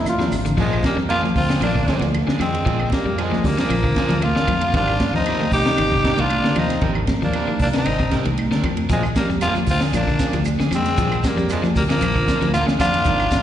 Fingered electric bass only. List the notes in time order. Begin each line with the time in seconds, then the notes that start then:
Already playing: D#2
0.32 G#1
0.58 A#1
0.97 F2
1.36 D2
1.61 A#1
2.01 D2
2.40 F2
2.66 A#1
3.05 F2
3.45 D2
3.70 A#1
4.10 D2
4.48 F2
4.74 G#1
5.13 D#2
5.52 C2
5.79 G#1
6.19 C2
6.57 D#2
6.82 G#1
7.23 D#2
7.60 C2
7.87 G#1
8.27 C2
8.64 F2
8.90 A#1
9.29 F2
9.68 D2
9.93 A#1
10.33 D2
10.72 F2
10.98 A#1
11.36 F2
11.76 D2
12.02 A#1
12.41 D2
12.80 F2
13.06 G#1